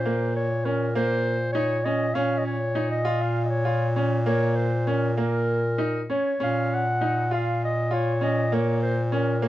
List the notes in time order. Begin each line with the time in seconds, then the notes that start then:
Already playing: A#2 C5
0.06 A#3
0.36 C#5
0.65 C#4 A#4
0.95 A#3 C5
1.53 D#4 C#5
1.85 C#4 D#5
2.14 A#2 C#4 F5
2.38 D#5
2.45 C#5
2.75 D#4
2.91 D#5
3.05 F4
3.21 F5
3.45 D#5
3.49 C#5
3.65 F4
3.96 C#4
4.26 A#3 C#5
4.56 C5
4.87 C#4 A#4
5.17 A#3 A#4
5.78 D#4
6.10 C#4 C#5
6.40 A#2 C#4 F5
6.75 F#5
7.01 D#4
7.31 F4 F5
7.64 D#5
7.91 F4 C#5
8.21 C#4 D#5
8.52 A#3 C#5
8.82 C5
9.04 C5
9.12 C#4 A#4
9.42 A#3 C#5